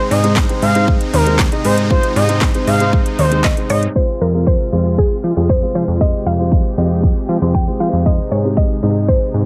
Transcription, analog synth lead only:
0.11 0.33 D#5 medium
0.62 0.84 F5 medium
1.14 1.35 A#4 medium
1.65 1.76 C5 medium
1.90 2.12 C5 loud
2.16 2.38 D#5 medium
2.67 2.89 F5 medium
3.19 3.41 C5 medium
3.70 3.81 D#5 medium

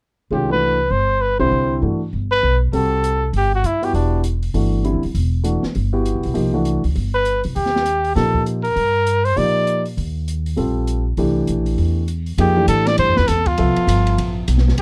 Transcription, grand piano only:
0.31 0.48 D#3 soft
0.31 0.48 G#3 soft
0.31 0.48 C#4 soft
0.31 0.48 F4 medium
0.50 0.76 E3 soft
0.50 0.76 A3 soft
0.50 0.76 D4 soft
0.50 0.77 F#4 soft
1.39 1.80 D3 medium
1.39 1.80 G3 medium
1.39 1.80 C4 medium
1.39 1.80 E4 medium
1.82 1.99 E3 soft
1.82 1.99 A3 soft
1.82 1.99 D4 soft
1.82 1.99 F#4 soft
2.73 3.18 G3 soft
2.73 3.18 C4 soft
2.73 3.18 F#4 soft
2.73 3.18 A4 medium
3.82 4.22 B3 medium
3.82 4.22 E4 medium
3.82 4.22 F#4 medium
3.82 4.22 G4 medium
4.54 4.83 E3 soft
4.54 4.83 A3 soft
4.54 4.84 D4 soft
4.54 4.84 F#4 soft
4.84 5.01 D3 medium
4.84 5.01 G3 soft
4.84 5.01 C4 soft
4.84 5.01 E4 medium
5.44 5.61 E3 soft
5.44 5.61 A3 soft
5.44 5.61 D4 soft
5.44 5.61 F#4 medium
5.93 6.33 B3 medium
5.93 6.33 E4 soft
5.93 6.33 F#4 medium
5.93 6.33 G4 medium
6.34 6.51 F3 medium
6.34 6.51 A#3 soft
6.34 6.51 D#4 soft
6.34 6.52 G4 medium
6.54 6.80 E3 medium
6.54 6.80 A3 soft
6.54 6.80 D4 medium
6.54 6.80 F#4 medium
8.16 8.61 F3 soft
8.16 8.61 A#3 soft
8.16 8.61 D#4 soft
8.16 8.61 G4 medium
9.36 9.81 F3 medium
9.36 9.81 A#3 soft
9.36 9.82 D#4 soft
9.36 9.81 G4 medium
10.56 11.02 G3 soft
10.56 11.02 C4 soft
10.56 11.02 F4 soft
10.56 11.02 A4 medium
11.18 12.01 E3 medium
11.18 12.01 A3 medium
11.18 12.01 D4 medium
11.18 12.01 G4 medium
12.38 12.55 F3 medium
12.38 12.55 A#3 medium
12.38 12.55 D#4 medium
12.38 12.55 G#4 medium
12.57 13.21 E3 medium
12.57 13.21 A3 medium
12.57 13.22 D4 medium
12.57 13.22 G4 medium
13.58 14.41 F3 medium
13.58 14.41 B3 medium
13.58 14.42 A4 medium
13.58 14.42 E5 medium

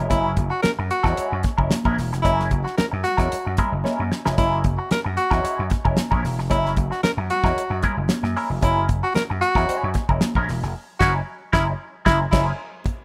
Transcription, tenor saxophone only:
0.10 0.32 E4 loud
0.50 0.61 F#4 loud
0.62 0.71 A#4 medium
0.91 1.41 F#4 loud
2.22 2.45 E4 loud
2.64 2.75 F#4 medium
2.78 2.86 A#4 medium
3.04 3.55 F#4 loud
4.38 4.59 E4 loud
4.78 4.88 F#4 medium
4.92 5.00 A#4 medium
5.17 5.68 F#4 loud
6.50 6.72 E4 loud
6.92 7.02 F#4 medium
7.03 7.12 A#4 medium
7.31 7.81 F#4 loud
8.64 8.85 E4 loud
9.03 9.14 F#4 loud
9.15 9.24 A#4 medium
9.41 9.92 F#4 loud
10.99 11.14 F#4 loud
11.53 11.67 E4 loud
12.06 12.20 E4 loud
12.32 12.46 E4 medium

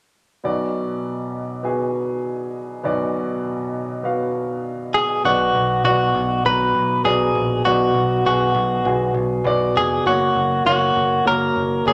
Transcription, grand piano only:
0.44 2.81 B1 medium
0.44 2.81 B2 medium
0.44 1.39 B3 medium
0.44 1.39 F#4 medium
0.44 1.40 D5 medium
1.63 2.59 B3 medium
1.63 2.59 F#4 soft
1.63 2.60 G#4 medium
2.83 5.21 B1 medium
2.83 5.21 B2 medium
2.83 3.79 B3 medium
2.83 3.79 F#4 medium
2.83 3.80 D5 medium
4.03 4.99 B3 medium
4.03 4.99 F#4 soft
4.03 5.00 F5 medium
5.25 6.11 B2 medium
5.25 5.72 B3 medium
5.25 5.73 F#4 soft
5.25 5.73 D5 medium
5.85 6.32 B3 medium
5.85 6.33 F#4 medium
5.85 6.33 D5 medium
6.44 6.92 B3 medium
6.44 6.93 F#4 medium
6.44 6.93 A#5 medium
7.05 7.53 B3 medium
7.05 7.53 F#4 medium
7.05 7.53 D5 medium
7.65 8.52 B2 medium
7.65 8.13 B3 medium
7.65 8.13 F#4 medium
7.65 8.14 D5 medium
8.26 8.73 B3 medium
8.26 8.73 F#4 medium
8.26 8.74 G#4 medium
8.85 9.33 B3 medium
8.85 9.33 F#4 soft
8.85 9.33 G#4 medium
9.45 9.93 B3 medium
9.45 9.93 F#4 medium
9.45 9.94 D5 medium
10.06 10.53 A#3 medium
10.06 10.53 F#4 medium
10.06 10.54 C#5 medium
10.66 11.13 A#3 medium
10.66 11.14 F#4 medium
10.66 11.14 C#5 medium
11.25 11.73 A#3 medium
11.25 11.73 F#4 medium
11.25 11.74 C#5 medium
11.86 11.93 A#3 medium
11.86 11.93 F#4 medium
11.86 11.93 C#5 medium

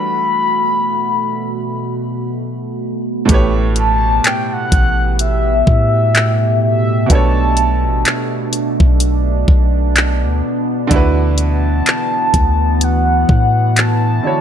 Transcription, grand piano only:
0.00 3.23 G3 medium
0.00 3.24 D4 medium
0.00 3.25 F#4 medium
0.00 3.27 A4 medium
0.00 3.30 B4 medium
3.25 7.04 A2 medium
3.25 7.05 A3 medium
3.30 7.06 G4 medium
3.30 7.07 B4 medium
3.34 7.08 C#5 medium
7.06 10.85 B2 medium
7.06 10.86 B3 medium
7.11 10.87 D4 medium
7.11 10.88 A4 medium
7.15 10.89 C#5 medium
10.87 14.18 D3 medium
10.87 14.20 D4 medium
10.92 14.21 E4 medium
10.92 14.22 F#4 medium
10.96 14.23 B4 medium
14.23 14.41 D3 soft
14.23 14.41 D4 soft
14.23 14.41 E4 soft
14.23 14.41 F#4 soft
14.27 14.41 C#5 medium

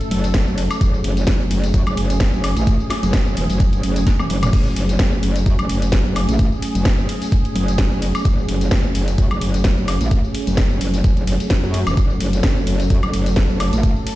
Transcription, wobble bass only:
0.11 0.45 F#1 loud
0.47 0.68 F#1 medium
0.81 1.03 F#1 loud
1.04 1.26 F#1 loud
1.28 1.72 F#1 loud
1.74 1.85 F#2 loud
1.87 1.96 F#1 loud
1.97 2.31 F#1 loud
2.33 2.55 F#1 loud
2.56 2.78 A1 loud
3.03 3.35 F#1 loud
3.37 3.48 E1 loud
3.50 3.82 F#1 loud
3.83 4.05 F#1 loud
4.30 4.51 F#1 medium
4.53 4.75 F#1 loud
4.76 4.98 F#1 loud
5.00 5.44 F#1 loud
5.46 5.57 F#2 loud
5.59 5.68 F#1 loud
5.69 6.03 F#1 loud
6.05 6.27 F#1 loud
6.29 6.50 A1 loud
6.75 7.07 F#1 loud
7.55 7.89 F#1 loud
7.91 8.13 F#1 loud
8.25 8.47 F#1 loud
8.48 8.70 F#1 loud
8.72 9.17 F#1 loud
9.18 9.29 F#2 loud
9.31 9.40 F#1 loud
9.41 9.75 F#1 loud
9.77 9.99 F#1 loud
10.01 10.22 A1 loud
10.47 10.79 F#1 loud
10.81 11.03 F#1 loud
11.04 11.38 F#1 medium
11.63 11.85 F#2 loud
11.87 11.96 E1 loud
11.97 12.19 F#1 loud
12.20 12.42 F#1 loud
12.44 12.89 F#1 loud
12.90 13.01 F#2 loud
13.03 13.12 F#1 loud
13.14 13.48 F#1 loud
13.50 13.71 F#1 loud
13.73 13.94 A1 loud

